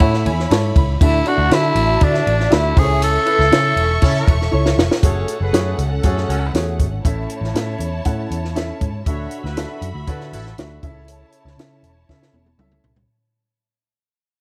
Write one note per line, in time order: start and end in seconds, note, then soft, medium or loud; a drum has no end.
0.00 0.27 A2 loud
0.00 0.76 E4 loud
0.00 0.97 E4 medium
0.00 0.30 E4 loud
0.00 0.30 A4 medium
0.00 0.97 C#5 medium
0.00 0.31 C#5 loud
0.00 0.76 E5 medium
0.00 0.24 F#5 medium
0.00 0.97 B5 loud
0.00 kick loud
0.00 ride medium
0.14 snare soft
0.26 0.45 E2 loud
0.26 0.49 G#5 medium
0.26 ride medium
0.40 snare soft
0.51 0.71 G#2 loud
0.51 0.81 E4 medium
0.51 0.81 A4 medium
0.51 0.81 C#5 loud
0.51 0.74 A5 medium
0.51 snare loud
0.51 ride medium
0.76 0.96 C#2 loud
0.76 1.00 B5 medium
0.76 kick medium
0.76 ride medium
1.01 1.21 D2 medium
1.01 1.73 D3 medium
1.01 1.16 D4 medium
1.01 1.16 E4 medium
1.01 1.29 E4 loud
1.01 2.73 F#4 loud
1.01 1.16 F#4 medium
1.01 1.16 A4 medium
1.01 1.24 E5 medium
1.01 2.73 E5 loud
1.01 1.16 E5 loud
1.01 2.73 A5 loud
1.01 kick loud
1.01 ride loud
1.26 1.41 D4 medium
1.26 1.41 E4 medium
1.26 1.41 F#4 medium
1.26 1.55 F#4 loud
1.26 1.41 A4 medium
1.26 1.41 D5 medium
1.26 1.51 F#5 medium
1.26 ride medium
1.38 1.48 D2 loud
1.50 1.71 D3 loud
1.50 1.81 D4 medium
1.50 1.81 E4 medium
1.50 2.05 E4 loud
1.50 1.81 F#4 medium
1.50 1.81 A4 medium
1.50 2.01 E5 medium
1.50 1.81 E5 medium
1.50 snare loud
1.50 ride medium
1.75 1.95 A1 loud
1.75 ride medium
2.01 2.21 D3 loud
2.01 2.31 D4 medium
2.01 2.55 D4 loud
2.01 2.31 E4 medium
2.01 2.31 F#4 medium
2.01 2.31 A4 medium
2.01 2.52 D5 medium
2.01 2.32 E5 medium
2.01 kick medium
2.01 ride medium
2.14 snare soft
2.27 2.46 A1 medium
2.27 ride medium
2.40 snare soft
2.49 2.72 D2 medium
2.49 2.76 D4 medium
2.49 2.74 E4 medium
2.49 2.80 E4 loud
2.49 2.76 F#4 medium
2.49 2.74 A4 medium
2.49 2.76 E5 medium
2.49 2.77 E5 medium
2.49 snare loud
2.49 ride medium
2.76 3.17 C#2 medium
2.76 3.48 C#3 medium
2.76 3.17 E4 medium
2.76 3.03 G#4 loud
2.76 4.99 A4 medium
2.76 3.17 A4 medium
2.76 2.83 C5 medium
2.76 4.99 E5 medium
2.76 3.02 G#5 medium
2.76 4.99 C#6 loud
2.76 kick loud
2.76 open hi-hat soft
2.76 ride medium
2.82 3.20 C#5 loud
3.02 4.50 A4 loud
3.02 4.50 A5 medium
3.02 hi-hat pedal medium
3.02 ride medium
3.26 3.41 E4 medium
3.26 3.42 A4 medium
3.26 3.42 B4 medium
3.26 ride medium
3.39 3.49 C#2 loud
3.39 snare soft
3.51 3.72 C#3 loud
3.51 3.63 C#4 medium
3.51 3.82 E4 medium
3.51 3.63 E4 medium
3.51 3.82 A4 medium
3.51 3.63 A4 loud
3.51 3.82 C#5 medium
3.51 snare loud
3.51 ride medium
3.76 3.97 E1 loud
3.76 3.89 C#4 medium
3.76 3.89 E4 medium
3.76 3.88 A4 medium
3.76 ride medium
4.02 4.22 C#3 loud
4.02 4.35 C#4 loud
4.02 4.32 E4 medium
4.02 4.35 E4 loud
4.02 4.32 A4 medium
4.02 4.35 A4 loud
4.02 4.33 C#5 loud
4.02 kick medium
4.02 ride medium
4.28 4.47 E1 medium
4.28 kick loud
4.28 ride medium
4.42 snare soft
4.51 4.73 C#2 loud
4.51 4.82 E4 loud
4.51 4.82 A4 medium
4.51 4.83 C#5 loud
4.66 snare medium
4.78 4.88 F1 medium
4.78 snare loud
4.91 snare loud
5.02 5.23 F#1 loud
5.02 5.33 A3 medium
5.02 7.00 C#4 medium
5.02 5.39 C#4 medium
5.02 5.33 F#4 medium
5.02 5.33 G#4 medium
5.02 7.00 A4 medium
5.02 5.39 A4 medium
5.02 5.38 C#5 medium
5.02 5.33 C#5 loud
5.02 7.00 F#5 medium
5.02 kick loud
5.02 closed hi-hat loud
5.28 closed hi-hat medium
5.41 5.51 F#1 medium
5.41 5.77 F#4 medium
5.41 5.77 G#4 medium
5.41 5.77 B4 medium
5.53 5.73 F#2 loud
5.53 5.83 A3 medium
5.53 5.84 F#4 medium
5.53 5.84 G#4 medium
5.53 5.84 C#5 medium
5.53 snare medium
5.53 closed hi-hat medium
5.78 5.98 C#2 loud
5.78 closed hi-hat medium
6.03 6.24 F#2 loud
6.03 6.34 A3 medium
6.03 6.23 C#4 medium
6.03 6.24 F#4 medium
6.03 6.34 F#4 medium
6.03 6.35 G#4 medium
6.03 6.23 A4 loud
6.03 6.35 C#5 medium
6.03 kick medium
6.03 closed hi-hat medium
6.17 snare soft
6.28 6.49 C#2 medium
6.28 6.49 C#4 loud
6.28 6.49 F#4 medium
6.28 6.49 A4 loud
6.28 closed hi-hat medium
6.54 6.81 E2 loud
6.54 6.85 A3 medium
6.54 6.85 F#4 medium
6.54 6.85 G#4 medium
6.54 6.85 C#5 medium
6.54 snare medium
6.54 closed hi-hat medium
6.79 6.99 G#1 medium
6.79 kick loud
6.79 closed hi-hat medium
7.04 7.25 A1 loud
7.04 7.77 A2 medium
7.04 7.35 C#4 medium
7.04 9.02 E4 medium
7.04 7.35 E4 medium
7.04 7.35 A4 medium
7.04 9.02 C#5 medium
7.04 7.35 E5 medium
7.04 9.02 A5 medium
7.04 kick loud
7.04 closed hi-hat loud
7.29 closed hi-hat medium
7.41 7.52 A1 medium
7.41 snare soft
7.54 7.74 A2 medium
7.54 7.85 C#4 medium
7.54 7.85 E4 medium
7.54 7.85 A4 medium
7.54 7.86 E5 loud
7.54 snare medium
7.54 closed hi-hat medium
7.79 8.00 E2 medium
7.79 closed hi-hat medium
8.05 8.25 A2 loud
8.05 8.36 C#4 medium
8.05 8.35 E4 medium
8.05 8.35 A4 medium
8.05 8.36 F#5 loud
8.05 kick medium
8.05 closed hi-hat medium
8.31 8.70 E2 medium
8.31 8.54 A5 medium
8.31 closed hi-hat medium
8.45 snare soft
8.55 8.86 C#4 loud
8.55 8.86 E4 medium
8.55 8.86 A4 medium
8.55 8.86 E5 medium
8.55 snare medium
8.55 closed hi-hat medium
8.81 9.01 G#2 medium
8.81 kick medium
8.81 closed hi-hat medium
9.06 9.26 D2 loud
9.06 9.78 D3 medium
9.06 9.37 D4 medium
9.06 10.79 F#4 medium
9.06 9.42 F#4 medium
9.06 9.37 F#4 medium
9.06 9.42 A4 medium
9.06 9.37 A4 medium
9.06 9.42 C#5 loud
9.06 10.79 E5 medium
9.06 9.37 E5 loud
9.06 10.79 B5 loud
9.06 kick loud
9.06 closed hi-hat loud
9.31 closed hi-hat medium
9.44 9.64 D2 loud
9.44 9.80 E4 medium
9.44 9.80 F#4 medium
9.44 9.80 B4 medium
9.44 snare soft
9.57 9.87 D4 medium
9.57 9.87 F#4 medium
9.57 9.87 A4 medium
9.57 9.87 E5 loud
9.57 snare loud
9.57 closed hi-hat medium
9.82 9.92 F#2 loud
9.82 closed hi-hat medium
9.94 10.04 D2 medium
10.07 10.34 D3 loud
10.07 10.38 D4 medium
10.07 10.28 E4 medium
10.07 10.28 F#4 medium
10.07 10.38 F#4 medium
10.07 10.27 A4 loud
10.07 10.38 A4 medium
10.07 10.38 B4 loud
10.07 kick medium
10.07 closed hi-hat medium
10.21 snare soft
10.32 10.52 A1 medium
10.32 10.53 E4 medium
10.32 10.53 F#4 medium
10.32 10.52 A4 loud
10.32 closed hi-hat medium
10.46 snare soft
10.58 10.78 D2 medium
10.58 10.84 D4 medium
10.58 10.84 F#4 medium
10.58 10.82 A4 medium
10.58 10.82 E5 medium
10.58 snare loud
10.58 closed hi-hat medium
10.83 11.23 C#2 medium
10.83 11.55 C#3 medium
10.83 11.43 C#4 loud
10.83 11.43 E4 medium
10.83 13.06 E4 medium
10.83 11.44 A4 medium
10.83 13.06 C#5 medium
10.83 11.44 E5 loud
10.83 13.06 A5 loud
10.83 kick loud
10.83 closed hi-hat medium
11.08 closed hi-hat loud
11.32 closed hi-hat medium
11.45 11.55 C#2 loud
11.45 snare soft
11.57 11.84 C#3 loud
11.57 11.89 C#4 loud
11.57 11.89 E4 medium
11.57 11.89 A4 medium
11.57 11.89 E5 medium
11.57 snare medium
11.57 closed hi-hat medium
11.83 12.03 E1 medium
11.83 closed hi-hat medium
12.09 12.29 C#3 loud
12.09 12.39 C#4 medium
12.09 12.39 E4 medium
12.09 12.39 A4 medium
12.09 12.39 E5 loud
12.09 kick medium
12.09 snare medium
12.22 snare medium
12.33 12.53 E1 medium
12.33 high tom medium
12.46 high tom medium
12.58 12.78 C#2 medium
12.58 12.90 C#4 medium
12.58 12.90 E4 medium
12.58 12.90 A4 medium
12.58 12.90 E5 medium
12.58 mid tom medium
12.72 mid tom medium
12.84 13.04 C2 medium
12.84 floor tom medium
12.96 floor tom loud